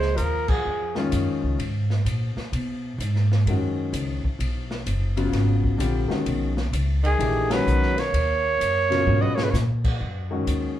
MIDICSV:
0, 0, Header, 1, 7, 480
1, 0, Start_track
1, 0, Tempo, 467654
1, 669, Time_signature, 4, 2, 24, 8
1, 11081, End_track
2, 0, Start_track
2, 0, Title_t, "Trumpet"
2, 0, Program_c, 0, 56
2, 0, Note_on_c, 0, 72, 94
2, 172, Note_on_c, 0, 70, 86
2, 188, Note_off_c, 0, 72, 0
2, 499, Note_on_c, 0, 68, 74
2, 515, Note_off_c, 0, 70, 0
2, 983, Note_off_c, 0, 68, 0
2, 7245, Note_on_c, 0, 68, 84
2, 7724, Note_on_c, 0, 71, 99
2, 7739, Note_off_c, 0, 68, 0
2, 8205, Note_on_c, 0, 73, 100
2, 8220, Note_off_c, 0, 71, 0
2, 9459, Note_on_c, 0, 75, 81
2, 9474, Note_off_c, 0, 73, 0
2, 9596, Note_on_c, 0, 73, 86
2, 9612, Note_off_c, 0, 75, 0
2, 9685, Note_on_c, 0, 71, 77
2, 9701, Note_off_c, 0, 73, 0
2, 9756, Note_on_c, 0, 73, 82
2, 9771, Note_off_c, 0, 71, 0
2, 9806, Note_off_c, 0, 73, 0
2, 11081, End_track
3, 0, Start_track
3, 0, Title_t, "Grand piano"
3, 0, Program_c, 1, 0
3, 977, Note_on_c, 1, 51, 64
3, 990, Note_on_c, 1, 56, 61
3, 991, Note_on_c, 1, 61, 69
3, 994, Note_on_c, 1, 65, 81
3, 1594, Note_off_c, 1, 51, 0
3, 1601, Note_off_c, 1, 56, 0
3, 1601, Note_off_c, 1, 61, 0
3, 1602, Note_off_c, 1, 65, 0
3, 3572, Note_on_c, 1, 51, 58
3, 3579, Note_on_c, 1, 56, 50
3, 3589, Note_on_c, 1, 61, 51
3, 3595, Note_on_c, 1, 66, 66
3, 4296, Note_off_c, 1, 51, 0
3, 4299, Note_off_c, 1, 56, 0
3, 4304, Note_off_c, 1, 61, 0
3, 4307, Note_off_c, 1, 66, 0
3, 5303, Note_on_c, 1, 49, 71
3, 5308, Note_on_c, 1, 54, 62
3, 5312, Note_on_c, 1, 59, 65
3, 5323, Note_on_c, 1, 65, 68
3, 5918, Note_off_c, 1, 49, 0
3, 5920, Note_off_c, 1, 54, 0
3, 5923, Note_off_c, 1, 59, 0
3, 5928, Note_off_c, 1, 65, 0
3, 5932, Note_on_c, 1, 50, 61
3, 5939, Note_on_c, 1, 55, 60
3, 5953, Note_on_c, 1, 60, 60
3, 5956, Note_on_c, 1, 65, 69
3, 6227, Note_off_c, 1, 50, 0
3, 6230, Note_off_c, 1, 55, 0
3, 6237, Note_off_c, 1, 60, 0
3, 6239, Note_off_c, 1, 65, 0
3, 6243, Note_on_c, 1, 51, 61
3, 6256, Note_on_c, 1, 56, 55
3, 6259, Note_on_c, 1, 61, 56
3, 6263, Note_on_c, 1, 66, 63
3, 6673, Note_off_c, 1, 51, 0
3, 6680, Note_off_c, 1, 56, 0
3, 6681, Note_off_c, 1, 61, 0
3, 6683, Note_off_c, 1, 66, 0
3, 7371, Note_on_c, 1, 52, 60
3, 7383, Note_on_c, 1, 57, 53
3, 7387, Note_on_c, 1, 62, 57
3, 7396, Note_on_c, 1, 67, 68
3, 7666, Note_off_c, 1, 52, 0
3, 7672, Note_off_c, 1, 57, 0
3, 7674, Note_off_c, 1, 62, 0
3, 7679, Note_off_c, 1, 67, 0
3, 7692, Note_on_c, 1, 51, 63
3, 7693, Note_on_c, 1, 56, 58
3, 7706, Note_on_c, 1, 61, 59
3, 7716, Note_on_c, 1, 66, 73
3, 8117, Note_off_c, 1, 51, 0
3, 8117, Note_off_c, 1, 56, 0
3, 8124, Note_off_c, 1, 61, 0
3, 8129, Note_off_c, 1, 66, 0
3, 9134, Note_on_c, 1, 49, 70
3, 9141, Note_on_c, 1, 54, 64
3, 9145, Note_on_c, 1, 47, 71
3, 9157, Note_on_c, 1, 65, 80
3, 9752, Note_off_c, 1, 49, 0
3, 9756, Note_off_c, 1, 54, 0
3, 9757, Note_off_c, 1, 47, 0
3, 9763, Note_off_c, 1, 65, 0
3, 10579, Note_on_c, 1, 51, 61
3, 10582, Note_on_c, 1, 56, 57
3, 10592, Note_on_c, 1, 61, 54
3, 10595, Note_on_c, 1, 66, 60
3, 11081, Note_off_c, 1, 51, 0
3, 11081, Note_off_c, 1, 56, 0
3, 11081, Note_off_c, 1, 61, 0
3, 11081, Note_off_c, 1, 66, 0
3, 11081, End_track
4, 0, Start_track
4, 0, Title_t, "Tenor saxophone"
4, 0, Program_c, 2, 66
4, 0, Note_on_c, 2, 56, 95
4, 152, Note_on_c, 2, 53, 78
4, 167, Note_off_c, 2, 56, 0
4, 484, Note_off_c, 2, 53, 0
4, 484, Note_on_c, 2, 53, 61
4, 975, Note_off_c, 2, 53, 0
4, 7215, Note_on_c, 2, 51, 74
4, 7698, Note_on_c, 2, 54, 90
4, 7713, Note_off_c, 2, 51, 0
4, 8176, Note_on_c, 2, 58, 77
4, 8192, Note_off_c, 2, 54, 0
4, 9447, Note_on_c, 2, 59, 70
4, 9463, Note_off_c, 2, 58, 0
4, 9588, Note_on_c, 2, 58, 73
4, 9603, Note_off_c, 2, 59, 0
4, 9668, Note_on_c, 2, 56, 68
4, 9684, Note_off_c, 2, 58, 0
4, 9720, Note_on_c, 2, 58, 74
4, 9736, Note_off_c, 2, 56, 0
4, 9788, Note_off_c, 2, 58, 0
4, 11081, End_track
5, 0, Start_track
5, 0, Title_t, "Upright bass"
5, 0, Program_c, 3, 32
5, 0, Note_on_c, 3, 37, 83
5, 165, Note_off_c, 3, 37, 0
5, 187, Note_on_c, 3, 39, 83
5, 654, Note_off_c, 3, 39, 0
5, 668, Note_on_c, 3, 41, 79
5, 1135, Note_off_c, 3, 41, 0
5, 1150, Note_on_c, 3, 42, 86
5, 1307, Note_off_c, 3, 42, 0
5, 1307, Note_on_c, 3, 41, 55
5, 1458, Note_off_c, 3, 41, 0
5, 1464, Note_on_c, 3, 37, 62
5, 1616, Note_off_c, 3, 37, 0
5, 1625, Note_on_c, 3, 44, 81
5, 2094, Note_off_c, 3, 44, 0
5, 2103, Note_on_c, 3, 46, 83
5, 2401, Note_off_c, 3, 46, 0
5, 2587, Note_on_c, 3, 47, 81
5, 3056, Note_off_c, 3, 47, 0
5, 3062, Note_on_c, 3, 44, 88
5, 3533, Note_off_c, 3, 44, 0
5, 3547, Note_on_c, 3, 42, 83
5, 4016, Note_off_c, 3, 42, 0
5, 4031, Note_on_c, 3, 37, 88
5, 4326, Note_off_c, 3, 37, 0
5, 4505, Note_on_c, 3, 35, 81
5, 4976, Note_off_c, 3, 35, 0
5, 4992, Note_on_c, 3, 30, 88
5, 5459, Note_off_c, 3, 30, 0
5, 5464, Note_on_c, 3, 32, 82
5, 5929, Note_off_c, 3, 32, 0
5, 5935, Note_on_c, 3, 34, 94
5, 6238, Note_off_c, 3, 34, 0
5, 6425, Note_on_c, 3, 35, 88
5, 6895, Note_off_c, 3, 35, 0
5, 6907, Note_on_c, 3, 37, 93
5, 7376, Note_off_c, 3, 37, 0
5, 7381, Note_on_c, 3, 34, 82
5, 7853, Note_off_c, 3, 34, 0
5, 7862, Note_on_c, 3, 35, 87
5, 8333, Note_off_c, 3, 35, 0
5, 8342, Note_on_c, 3, 39, 82
5, 8813, Note_off_c, 3, 39, 0
5, 8829, Note_on_c, 3, 42, 83
5, 9296, Note_off_c, 3, 42, 0
5, 9304, Note_on_c, 3, 44, 83
5, 9773, Note_off_c, 3, 44, 0
5, 9783, Note_on_c, 3, 46, 88
5, 10252, Note_off_c, 3, 46, 0
5, 10268, Note_on_c, 3, 42, 85
5, 10735, Note_off_c, 3, 42, 0
5, 10745, Note_on_c, 3, 39, 84
5, 11081, Note_off_c, 3, 39, 0
5, 11081, End_track
6, 0, Start_track
6, 0, Title_t, "Muted upright bass strokes"
6, 2420, Note_on_c, 9, 29, 37
6, 2523, Note_off_c, 9, 29, 0
6, 4346, Note_on_c, 9, 29, 39
6, 4448, Note_off_c, 9, 29, 0
6, 11081, End_track
7, 0, Start_track
7, 0, Title_t, "Drums"
7, 18, Note_on_c, 9, 38, 37
7, 121, Note_off_c, 9, 38, 0
7, 180, Note_on_c, 9, 44, 49
7, 180, Note_on_c, 9, 51, 60
7, 282, Note_off_c, 9, 44, 0
7, 282, Note_off_c, 9, 51, 0
7, 494, Note_on_c, 9, 49, 69
7, 499, Note_on_c, 9, 36, 79
7, 596, Note_off_c, 9, 49, 0
7, 601, Note_off_c, 9, 36, 0
7, 978, Note_on_c, 9, 38, 47
7, 1081, Note_off_c, 9, 38, 0
7, 1148, Note_on_c, 9, 44, 57
7, 1148, Note_on_c, 9, 51, 64
7, 1251, Note_off_c, 9, 44, 0
7, 1251, Note_off_c, 9, 51, 0
7, 1637, Note_on_c, 9, 51, 64
7, 1740, Note_off_c, 9, 51, 0
7, 1954, Note_on_c, 9, 38, 40
7, 2056, Note_off_c, 9, 38, 0
7, 2117, Note_on_c, 9, 44, 51
7, 2117, Note_on_c, 9, 51, 65
7, 2219, Note_off_c, 9, 44, 0
7, 2219, Note_off_c, 9, 51, 0
7, 2432, Note_on_c, 9, 38, 44
7, 2534, Note_off_c, 9, 38, 0
7, 2598, Note_on_c, 9, 51, 65
7, 2701, Note_off_c, 9, 51, 0
7, 3083, Note_on_c, 9, 44, 57
7, 3083, Note_on_c, 9, 51, 67
7, 3185, Note_off_c, 9, 44, 0
7, 3185, Note_off_c, 9, 51, 0
7, 3239, Note_on_c, 9, 38, 27
7, 3342, Note_off_c, 9, 38, 0
7, 3404, Note_on_c, 9, 38, 46
7, 3507, Note_off_c, 9, 38, 0
7, 3562, Note_on_c, 9, 51, 61
7, 3664, Note_off_c, 9, 51, 0
7, 4039, Note_on_c, 9, 44, 53
7, 4039, Note_on_c, 9, 51, 68
7, 4141, Note_off_c, 9, 44, 0
7, 4141, Note_off_c, 9, 51, 0
7, 4354, Note_on_c, 9, 36, 53
7, 4457, Note_off_c, 9, 36, 0
7, 4520, Note_on_c, 9, 51, 66
7, 4622, Note_off_c, 9, 51, 0
7, 4832, Note_on_c, 9, 38, 49
7, 4935, Note_off_c, 9, 38, 0
7, 4993, Note_on_c, 9, 44, 50
7, 4993, Note_on_c, 9, 51, 66
7, 5096, Note_off_c, 9, 44, 0
7, 5096, Note_off_c, 9, 51, 0
7, 5309, Note_on_c, 9, 51, 51
7, 5411, Note_off_c, 9, 51, 0
7, 5471, Note_on_c, 9, 38, 37
7, 5473, Note_on_c, 9, 51, 55
7, 5574, Note_off_c, 9, 38, 0
7, 5576, Note_off_c, 9, 51, 0
7, 5785, Note_on_c, 9, 36, 51
7, 5887, Note_off_c, 9, 36, 0
7, 5954, Note_on_c, 9, 44, 56
7, 5954, Note_on_c, 9, 51, 70
7, 6057, Note_off_c, 9, 44, 0
7, 6057, Note_off_c, 9, 51, 0
7, 6263, Note_on_c, 9, 38, 45
7, 6366, Note_off_c, 9, 38, 0
7, 6427, Note_on_c, 9, 51, 63
7, 6529, Note_off_c, 9, 51, 0
7, 6744, Note_on_c, 9, 38, 53
7, 6847, Note_off_c, 9, 38, 0
7, 6911, Note_on_c, 9, 44, 53
7, 6911, Note_on_c, 9, 51, 66
7, 7014, Note_off_c, 9, 44, 0
7, 7014, Note_off_c, 9, 51, 0
7, 7233, Note_on_c, 9, 51, 45
7, 7335, Note_off_c, 9, 51, 0
7, 7394, Note_on_c, 9, 51, 64
7, 7497, Note_off_c, 9, 51, 0
7, 7704, Note_on_c, 9, 38, 86
7, 7706, Note_on_c, 9, 51, 62
7, 7806, Note_off_c, 9, 38, 0
7, 7808, Note_off_c, 9, 51, 0
7, 7872, Note_on_c, 9, 44, 53
7, 7974, Note_off_c, 9, 44, 0
7, 8031, Note_on_c, 9, 38, 27
7, 8134, Note_off_c, 9, 38, 0
7, 8189, Note_on_c, 9, 51, 46
7, 8195, Note_on_c, 9, 38, 45
7, 8291, Note_off_c, 9, 51, 0
7, 8298, Note_off_c, 9, 38, 0
7, 8355, Note_on_c, 9, 51, 68
7, 8458, Note_off_c, 9, 51, 0
7, 8838, Note_on_c, 9, 44, 60
7, 8838, Note_on_c, 9, 51, 64
7, 8941, Note_off_c, 9, 44, 0
7, 8941, Note_off_c, 9, 51, 0
7, 9151, Note_on_c, 9, 38, 42
7, 9153, Note_on_c, 9, 51, 48
7, 9253, Note_off_c, 9, 38, 0
7, 9255, Note_off_c, 9, 51, 0
7, 9309, Note_on_c, 9, 48, 53
7, 9412, Note_off_c, 9, 48, 0
7, 9466, Note_on_c, 9, 48, 59
7, 9568, Note_off_c, 9, 48, 0
7, 9624, Note_on_c, 9, 38, 81
7, 9727, Note_off_c, 9, 38, 0
7, 9790, Note_on_c, 9, 38, 58
7, 9792, Note_on_c, 9, 44, 60
7, 9893, Note_off_c, 9, 38, 0
7, 9895, Note_off_c, 9, 44, 0
7, 10103, Note_on_c, 9, 49, 75
7, 10104, Note_on_c, 9, 36, 74
7, 10206, Note_off_c, 9, 36, 0
7, 10206, Note_off_c, 9, 49, 0
7, 10749, Note_on_c, 9, 44, 55
7, 10749, Note_on_c, 9, 51, 64
7, 10851, Note_off_c, 9, 44, 0
7, 10851, Note_off_c, 9, 51, 0
7, 11081, End_track
0, 0, End_of_file